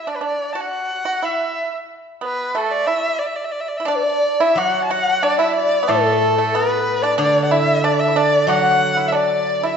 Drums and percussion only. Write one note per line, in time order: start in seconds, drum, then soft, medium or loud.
4.58 high woodblock medium
5.23 low woodblock soft
5.89 high woodblock medium
6.55 low woodblock soft
7.19 high woodblock medium
7.84 low woodblock soft
8.49 high woodblock medium
9.15 low woodblock soft